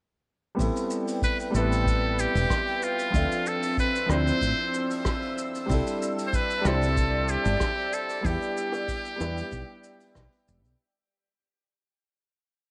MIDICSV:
0, 0, Header, 1, 6, 480
1, 0, Start_track
1, 0, Key_signature, 0, "minor"
1, 0, Tempo, 638298
1, 438, Time_signature, 4, 2, 24, 8
1, 9550, End_track
2, 0, Start_track
2, 0, Title_t, "Analog synth pad"
2, 0, Program_c, 0, 89
2, 437, Note_on_c, 0, 79, 71
2, 442, Note_on_c, 0, 71, 75
2, 2339, Note_off_c, 0, 79, 0
2, 2341, Note_off_c, 0, 71, 0
2, 2360, Note_on_c, 0, 88, 89
2, 2362, Note_on_c, 0, 60, 83
2, 4261, Note_off_c, 0, 60, 0
2, 4279, Note_on_c, 0, 74, 77
2, 4281, Note_on_c, 0, 81, 77
2, 6180, Note_off_c, 0, 81, 0
2, 6206, Note_on_c, 0, 79, 74
2, 8088, Note_off_c, 0, 74, 0
2, 8089, Note_off_c, 0, 88, 0
2, 8103, Note_off_c, 0, 79, 0
2, 9550, End_track
3, 0, Start_track
3, 0, Title_t, "Muted trumpet"
3, 0, Program_c, 1, 59
3, 934, Note_on_c, 1, 71, 82
3, 1038, Note_off_c, 1, 71, 0
3, 1176, Note_on_c, 1, 69, 90
3, 1656, Note_on_c, 1, 67, 93
3, 1667, Note_off_c, 1, 69, 0
3, 2131, Note_on_c, 1, 65, 92
3, 2143, Note_off_c, 1, 67, 0
3, 2618, Note_on_c, 1, 69, 93
3, 2629, Note_off_c, 1, 65, 0
3, 2848, Note_off_c, 1, 69, 0
3, 2858, Note_on_c, 1, 71, 100
3, 3072, Note_off_c, 1, 71, 0
3, 3096, Note_on_c, 1, 72, 112
3, 3777, Note_off_c, 1, 72, 0
3, 4715, Note_on_c, 1, 72, 80
3, 4776, Note_on_c, 1, 71, 102
3, 4788, Note_off_c, 1, 72, 0
3, 5012, Note_on_c, 1, 69, 100
3, 5023, Note_off_c, 1, 71, 0
3, 5489, Note_on_c, 1, 67, 95
3, 5501, Note_off_c, 1, 69, 0
3, 5969, Note_on_c, 1, 69, 98
3, 5981, Note_off_c, 1, 67, 0
3, 6206, Note_on_c, 1, 67, 99
3, 6217, Note_off_c, 1, 69, 0
3, 7882, Note_off_c, 1, 67, 0
3, 9550, End_track
4, 0, Start_track
4, 0, Title_t, "Grand piano"
4, 0, Program_c, 2, 0
4, 409, Note_on_c, 2, 55, 65
4, 422, Note_on_c, 2, 59, 66
4, 436, Note_on_c, 2, 60, 64
4, 449, Note_on_c, 2, 64, 65
4, 462, Note_on_c, 2, 69, 77
4, 593, Control_c, 2, 64, 127
4, 1117, Note_off_c, 2, 55, 0
4, 1123, Note_off_c, 2, 59, 0
4, 1130, Note_off_c, 2, 60, 0
4, 1133, Note_on_c, 2, 55, 83
4, 1137, Note_off_c, 2, 64, 0
4, 1143, Note_off_c, 2, 69, 0
4, 1145, Note_on_c, 2, 59, 74
4, 1159, Note_on_c, 2, 60, 74
4, 1174, Note_on_c, 2, 64, 76
4, 1186, Note_on_c, 2, 71, 86
4, 2319, Note_off_c, 2, 55, 0
4, 2325, Note_off_c, 2, 59, 0
4, 2332, Note_off_c, 2, 60, 0
4, 2334, Note_on_c, 2, 53, 68
4, 2339, Note_off_c, 2, 64, 0
4, 2345, Note_off_c, 2, 71, 0
4, 2346, Note_on_c, 2, 60, 62
4, 2361, Note_on_c, 2, 62, 62
4, 2367, Control_c, 2, 64, 0
4, 2374, Note_on_c, 2, 76, 64
4, 2388, Note_on_c, 2, 69, 74
4, 2476, Control_c, 2, 64, 127
4, 3039, Note_off_c, 2, 53, 0
4, 3045, Note_off_c, 2, 60, 0
4, 3053, Note_off_c, 2, 62, 0
4, 3056, Note_on_c, 2, 53, 79
4, 3059, Note_off_c, 2, 76, 0
4, 3066, Note_off_c, 2, 69, 0
4, 3071, Note_on_c, 2, 60, 69
4, 3082, Note_on_c, 2, 62, 71
4, 3097, Note_on_c, 2, 64, 70
4, 3110, Note_on_c, 2, 72, 86
4, 4240, Note_off_c, 2, 53, 0
4, 4247, Note_off_c, 2, 60, 0
4, 4253, Note_off_c, 2, 62, 0
4, 4255, Note_on_c, 2, 55, 74
4, 4261, Note_off_c, 2, 64, 0
4, 4267, Note_off_c, 2, 72, 0
4, 4270, Note_on_c, 2, 60, 66
4, 4281, Note_on_c, 2, 62, 66
4, 4290, Control_c, 2, 64, 0
4, 4296, Note_on_c, 2, 64, 65
4, 4308, Note_on_c, 2, 69, 86
4, 4435, Control_c, 2, 64, 127
4, 4960, Note_off_c, 2, 55, 0
4, 4967, Note_off_c, 2, 60, 0
4, 4973, Note_off_c, 2, 62, 0
4, 4973, Note_on_c, 2, 55, 88
4, 4980, Note_off_c, 2, 64, 0
4, 4986, Note_off_c, 2, 69, 0
4, 4987, Note_on_c, 2, 60, 76
4, 4998, Note_on_c, 2, 62, 74
4, 5013, Note_on_c, 2, 64, 81
4, 5025, Note_on_c, 2, 72, 92
4, 6159, Note_off_c, 2, 55, 0
4, 6165, Note_off_c, 2, 60, 0
4, 6171, Note_off_c, 2, 62, 0
4, 6173, Note_on_c, 2, 55, 68
4, 6179, Note_off_c, 2, 64, 0
4, 6185, Note_off_c, 2, 72, 0
4, 6186, Note_on_c, 2, 59, 65
4, 6199, Note_on_c, 2, 62, 64
4, 6207, Control_c, 2, 64, 0
4, 6213, Note_on_c, 2, 64, 67
4, 6226, Note_on_c, 2, 67, 78
4, 6350, Control_c, 2, 64, 127
4, 6879, Note_off_c, 2, 55, 0
4, 6885, Note_off_c, 2, 59, 0
4, 6890, Note_on_c, 2, 55, 82
4, 6892, Note_off_c, 2, 62, 0
4, 6899, Note_off_c, 2, 64, 0
4, 6904, Note_on_c, 2, 59, 70
4, 6905, Note_off_c, 2, 67, 0
4, 6917, Note_on_c, 2, 62, 71
4, 6929, Note_on_c, 2, 64, 69
4, 6943, Note_on_c, 2, 71, 82
4, 8077, Note_off_c, 2, 55, 0
4, 8084, Note_off_c, 2, 59, 0
4, 8091, Note_off_c, 2, 62, 0
4, 8097, Note_off_c, 2, 64, 0
4, 8104, Note_off_c, 2, 71, 0
4, 8128, Control_c, 2, 64, 0
4, 9550, End_track
5, 0, Start_track
5, 0, Title_t, "Fretless electric bass"
5, 0, Program_c, 3, 35
5, 442, Note_on_c, 3, 33, 87
5, 521, Note_off_c, 3, 33, 0
5, 1162, Note_on_c, 3, 33, 81
5, 1693, Note_off_c, 3, 33, 0
5, 1768, Note_on_c, 3, 28, 81
5, 1839, Note_off_c, 3, 28, 0
5, 2360, Note_on_c, 3, 38, 87
5, 2440, Note_off_c, 3, 38, 0
5, 3079, Note_on_c, 3, 38, 93
5, 3236, Note_off_c, 3, 38, 0
5, 3321, Note_on_c, 3, 33, 84
5, 3400, Note_off_c, 3, 33, 0
5, 4282, Note_on_c, 3, 36, 91
5, 4361, Note_off_c, 3, 36, 0
5, 5000, Note_on_c, 3, 36, 91
5, 5532, Note_off_c, 3, 36, 0
5, 5607, Note_on_c, 3, 31, 87
5, 5678, Note_off_c, 3, 31, 0
5, 6200, Note_on_c, 3, 40, 93
5, 6280, Note_off_c, 3, 40, 0
5, 6923, Note_on_c, 3, 40, 87
5, 7078, Note_off_c, 3, 40, 0
5, 7162, Note_on_c, 3, 35, 88
5, 7241, Note_off_c, 3, 35, 0
5, 7642, Note_on_c, 3, 35, 78
5, 7721, Note_off_c, 3, 35, 0
5, 7884, Note_on_c, 3, 28, 97
5, 8011, Note_off_c, 3, 28, 0
5, 8011, Note_on_c, 3, 35, 74
5, 8080, Note_off_c, 3, 35, 0
5, 9550, End_track
6, 0, Start_track
6, 0, Title_t, "Drums"
6, 438, Note_on_c, 9, 46, 62
6, 441, Note_on_c, 9, 36, 96
6, 450, Note_on_c, 9, 82, 56
6, 514, Note_off_c, 9, 46, 0
6, 516, Note_off_c, 9, 36, 0
6, 525, Note_off_c, 9, 82, 0
6, 564, Note_on_c, 9, 46, 41
6, 574, Note_on_c, 9, 82, 44
6, 640, Note_off_c, 9, 46, 0
6, 649, Note_off_c, 9, 82, 0
6, 680, Note_on_c, 9, 82, 67
6, 755, Note_off_c, 9, 82, 0
6, 806, Note_on_c, 9, 46, 56
6, 814, Note_on_c, 9, 82, 43
6, 881, Note_off_c, 9, 46, 0
6, 889, Note_off_c, 9, 82, 0
6, 920, Note_on_c, 9, 36, 95
6, 923, Note_on_c, 9, 46, 66
6, 928, Note_on_c, 9, 82, 56
6, 995, Note_off_c, 9, 36, 0
6, 998, Note_off_c, 9, 46, 0
6, 1004, Note_off_c, 9, 82, 0
6, 1046, Note_on_c, 9, 46, 48
6, 1054, Note_on_c, 9, 82, 48
6, 1121, Note_off_c, 9, 46, 0
6, 1129, Note_off_c, 9, 82, 0
6, 1164, Note_on_c, 9, 82, 73
6, 1240, Note_off_c, 9, 82, 0
6, 1296, Note_on_c, 9, 82, 46
6, 1298, Note_on_c, 9, 46, 55
6, 1372, Note_off_c, 9, 82, 0
6, 1373, Note_off_c, 9, 46, 0
6, 1400, Note_on_c, 9, 36, 99
6, 1409, Note_on_c, 9, 46, 63
6, 1411, Note_on_c, 9, 82, 50
6, 1475, Note_off_c, 9, 36, 0
6, 1484, Note_off_c, 9, 46, 0
6, 1486, Note_off_c, 9, 82, 0
6, 1646, Note_on_c, 9, 82, 86
6, 1721, Note_off_c, 9, 82, 0
6, 1766, Note_on_c, 9, 46, 59
6, 1776, Note_on_c, 9, 82, 45
6, 1841, Note_off_c, 9, 46, 0
6, 1852, Note_off_c, 9, 82, 0
6, 1879, Note_on_c, 9, 36, 102
6, 1882, Note_on_c, 9, 37, 67
6, 1885, Note_on_c, 9, 46, 60
6, 1888, Note_on_c, 9, 82, 53
6, 1954, Note_off_c, 9, 36, 0
6, 1957, Note_off_c, 9, 37, 0
6, 1960, Note_off_c, 9, 46, 0
6, 1963, Note_off_c, 9, 82, 0
6, 2005, Note_on_c, 9, 46, 48
6, 2080, Note_off_c, 9, 46, 0
6, 2124, Note_on_c, 9, 82, 74
6, 2199, Note_off_c, 9, 82, 0
6, 2240, Note_on_c, 9, 46, 52
6, 2250, Note_on_c, 9, 82, 44
6, 2316, Note_off_c, 9, 46, 0
6, 2325, Note_off_c, 9, 82, 0
6, 2358, Note_on_c, 9, 46, 65
6, 2359, Note_on_c, 9, 36, 105
6, 2366, Note_on_c, 9, 82, 63
6, 2433, Note_off_c, 9, 46, 0
6, 2434, Note_off_c, 9, 36, 0
6, 2442, Note_off_c, 9, 82, 0
6, 2490, Note_on_c, 9, 46, 42
6, 2496, Note_on_c, 9, 82, 45
6, 2565, Note_off_c, 9, 46, 0
6, 2572, Note_off_c, 9, 82, 0
6, 2603, Note_on_c, 9, 82, 81
6, 2678, Note_off_c, 9, 82, 0
6, 2729, Note_on_c, 9, 46, 59
6, 2729, Note_on_c, 9, 82, 47
6, 2804, Note_off_c, 9, 82, 0
6, 2805, Note_off_c, 9, 46, 0
6, 2839, Note_on_c, 9, 36, 93
6, 2845, Note_on_c, 9, 46, 60
6, 2851, Note_on_c, 9, 82, 50
6, 2914, Note_off_c, 9, 36, 0
6, 2920, Note_off_c, 9, 46, 0
6, 2926, Note_off_c, 9, 82, 0
6, 2975, Note_on_c, 9, 46, 52
6, 2976, Note_on_c, 9, 82, 45
6, 3050, Note_off_c, 9, 46, 0
6, 3051, Note_off_c, 9, 82, 0
6, 3082, Note_on_c, 9, 37, 78
6, 3088, Note_on_c, 9, 82, 82
6, 3157, Note_off_c, 9, 37, 0
6, 3163, Note_off_c, 9, 82, 0
6, 3209, Note_on_c, 9, 46, 59
6, 3216, Note_on_c, 9, 82, 52
6, 3285, Note_off_c, 9, 46, 0
6, 3291, Note_off_c, 9, 82, 0
6, 3316, Note_on_c, 9, 46, 65
6, 3319, Note_on_c, 9, 36, 100
6, 3328, Note_on_c, 9, 82, 52
6, 3391, Note_off_c, 9, 46, 0
6, 3394, Note_off_c, 9, 36, 0
6, 3403, Note_off_c, 9, 82, 0
6, 3563, Note_on_c, 9, 82, 75
6, 3638, Note_off_c, 9, 82, 0
6, 3688, Note_on_c, 9, 82, 44
6, 3691, Note_on_c, 9, 46, 57
6, 3763, Note_off_c, 9, 82, 0
6, 3766, Note_off_c, 9, 46, 0
6, 3797, Note_on_c, 9, 37, 73
6, 3800, Note_on_c, 9, 36, 101
6, 3804, Note_on_c, 9, 46, 60
6, 3804, Note_on_c, 9, 82, 50
6, 3872, Note_off_c, 9, 37, 0
6, 3875, Note_off_c, 9, 36, 0
6, 3879, Note_off_c, 9, 46, 0
6, 3880, Note_off_c, 9, 82, 0
6, 3927, Note_on_c, 9, 46, 49
6, 4002, Note_off_c, 9, 46, 0
6, 4047, Note_on_c, 9, 82, 85
6, 4122, Note_off_c, 9, 82, 0
6, 4168, Note_on_c, 9, 46, 50
6, 4174, Note_on_c, 9, 82, 44
6, 4243, Note_off_c, 9, 46, 0
6, 4250, Note_off_c, 9, 82, 0
6, 4278, Note_on_c, 9, 46, 67
6, 4280, Note_on_c, 9, 36, 108
6, 4289, Note_on_c, 9, 82, 60
6, 4353, Note_off_c, 9, 46, 0
6, 4355, Note_off_c, 9, 36, 0
6, 4365, Note_off_c, 9, 82, 0
6, 4408, Note_on_c, 9, 46, 43
6, 4412, Note_on_c, 9, 82, 49
6, 4483, Note_off_c, 9, 46, 0
6, 4488, Note_off_c, 9, 82, 0
6, 4527, Note_on_c, 9, 82, 84
6, 4603, Note_off_c, 9, 82, 0
6, 4649, Note_on_c, 9, 46, 55
6, 4651, Note_on_c, 9, 82, 56
6, 4725, Note_off_c, 9, 46, 0
6, 4726, Note_off_c, 9, 82, 0
6, 4759, Note_on_c, 9, 36, 98
6, 4762, Note_on_c, 9, 46, 64
6, 4762, Note_on_c, 9, 82, 59
6, 4834, Note_off_c, 9, 36, 0
6, 4837, Note_off_c, 9, 46, 0
6, 4837, Note_off_c, 9, 82, 0
6, 4889, Note_on_c, 9, 46, 51
6, 4890, Note_on_c, 9, 82, 47
6, 4964, Note_off_c, 9, 46, 0
6, 4965, Note_off_c, 9, 82, 0
6, 4998, Note_on_c, 9, 37, 72
6, 5003, Note_on_c, 9, 82, 85
6, 5074, Note_off_c, 9, 37, 0
6, 5079, Note_off_c, 9, 82, 0
6, 5123, Note_on_c, 9, 46, 58
6, 5134, Note_on_c, 9, 82, 51
6, 5198, Note_off_c, 9, 46, 0
6, 5210, Note_off_c, 9, 82, 0
6, 5239, Note_on_c, 9, 36, 110
6, 5241, Note_on_c, 9, 46, 54
6, 5241, Note_on_c, 9, 82, 56
6, 5314, Note_off_c, 9, 36, 0
6, 5316, Note_off_c, 9, 46, 0
6, 5317, Note_off_c, 9, 82, 0
6, 5476, Note_on_c, 9, 82, 77
6, 5551, Note_off_c, 9, 82, 0
6, 5605, Note_on_c, 9, 82, 52
6, 5609, Note_on_c, 9, 46, 58
6, 5681, Note_off_c, 9, 82, 0
6, 5684, Note_off_c, 9, 46, 0
6, 5717, Note_on_c, 9, 37, 70
6, 5718, Note_on_c, 9, 46, 58
6, 5719, Note_on_c, 9, 36, 113
6, 5724, Note_on_c, 9, 82, 57
6, 5792, Note_off_c, 9, 37, 0
6, 5793, Note_off_c, 9, 46, 0
6, 5794, Note_off_c, 9, 36, 0
6, 5799, Note_off_c, 9, 82, 0
6, 5847, Note_on_c, 9, 46, 44
6, 5923, Note_off_c, 9, 46, 0
6, 5963, Note_on_c, 9, 82, 88
6, 6039, Note_off_c, 9, 82, 0
6, 6081, Note_on_c, 9, 46, 52
6, 6089, Note_on_c, 9, 82, 48
6, 6156, Note_off_c, 9, 46, 0
6, 6164, Note_off_c, 9, 82, 0
6, 6198, Note_on_c, 9, 46, 69
6, 6199, Note_on_c, 9, 36, 105
6, 6206, Note_on_c, 9, 82, 55
6, 6273, Note_off_c, 9, 46, 0
6, 6274, Note_off_c, 9, 36, 0
6, 6281, Note_off_c, 9, 82, 0
6, 6324, Note_on_c, 9, 46, 45
6, 6334, Note_on_c, 9, 82, 47
6, 6399, Note_off_c, 9, 46, 0
6, 6409, Note_off_c, 9, 82, 0
6, 6445, Note_on_c, 9, 82, 82
6, 6520, Note_off_c, 9, 82, 0
6, 6560, Note_on_c, 9, 60, 64
6, 6564, Note_on_c, 9, 46, 55
6, 6570, Note_on_c, 9, 82, 48
6, 6636, Note_off_c, 9, 60, 0
6, 6640, Note_off_c, 9, 46, 0
6, 6645, Note_off_c, 9, 82, 0
6, 6677, Note_on_c, 9, 46, 67
6, 6679, Note_on_c, 9, 36, 89
6, 6684, Note_on_c, 9, 82, 56
6, 6752, Note_off_c, 9, 46, 0
6, 6755, Note_off_c, 9, 36, 0
6, 6759, Note_off_c, 9, 82, 0
6, 6800, Note_on_c, 9, 46, 46
6, 6809, Note_on_c, 9, 82, 47
6, 6875, Note_off_c, 9, 46, 0
6, 6884, Note_off_c, 9, 82, 0
6, 6924, Note_on_c, 9, 82, 89
6, 6926, Note_on_c, 9, 60, 82
6, 6999, Note_off_c, 9, 82, 0
6, 7001, Note_off_c, 9, 60, 0
6, 7045, Note_on_c, 9, 46, 62
6, 7051, Note_on_c, 9, 82, 47
6, 7120, Note_off_c, 9, 46, 0
6, 7126, Note_off_c, 9, 82, 0
6, 7149, Note_on_c, 9, 46, 54
6, 7160, Note_on_c, 9, 36, 104
6, 7161, Note_on_c, 9, 82, 58
6, 7224, Note_off_c, 9, 46, 0
6, 7235, Note_off_c, 9, 36, 0
6, 7236, Note_off_c, 9, 82, 0
6, 7396, Note_on_c, 9, 82, 83
6, 7471, Note_off_c, 9, 82, 0
6, 7519, Note_on_c, 9, 46, 55
6, 7525, Note_on_c, 9, 82, 46
6, 7595, Note_off_c, 9, 46, 0
6, 7600, Note_off_c, 9, 82, 0
6, 7633, Note_on_c, 9, 46, 54
6, 7634, Note_on_c, 9, 37, 69
6, 7640, Note_on_c, 9, 36, 114
6, 7640, Note_on_c, 9, 82, 55
6, 7708, Note_off_c, 9, 46, 0
6, 7709, Note_off_c, 9, 37, 0
6, 7715, Note_off_c, 9, 36, 0
6, 7716, Note_off_c, 9, 82, 0
6, 7763, Note_on_c, 9, 46, 47
6, 7838, Note_off_c, 9, 46, 0
6, 7881, Note_on_c, 9, 82, 82
6, 7956, Note_off_c, 9, 82, 0
6, 8000, Note_on_c, 9, 46, 52
6, 8011, Note_on_c, 9, 82, 49
6, 8075, Note_off_c, 9, 46, 0
6, 8086, Note_off_c, 9, 82, 0
6, 9550, End_track
0, 0, End_of_file